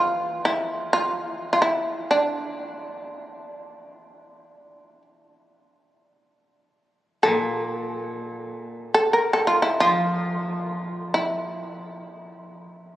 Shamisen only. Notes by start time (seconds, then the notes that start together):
Already playing: F4
0.45 E4
0.93 F4
1.25 E4
1.53 F4
1.62 E4
2.11 D4
7.23 A4
7.63 A#4
8.94 A4
9.13 A#4
9.33 A4
9.47 F4
9.62 E4
9.80 F4
11.14 E4